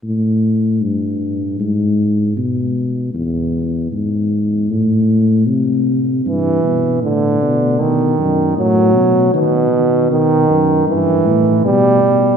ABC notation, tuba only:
X:1
M:4/4
L:1/8
Q:1/4=78
K:Ephr
V:1 name="Tuba" clef=bass
A,,2 G,,2 ^G,,2 B,,2 | E,,2 ^G,,2 A,,2 C,2 | G,, B,, A,, B,, B,, ^F,, A,, B,, | ^D, D, B,, ^F,, G,, A,, B,, B,, |]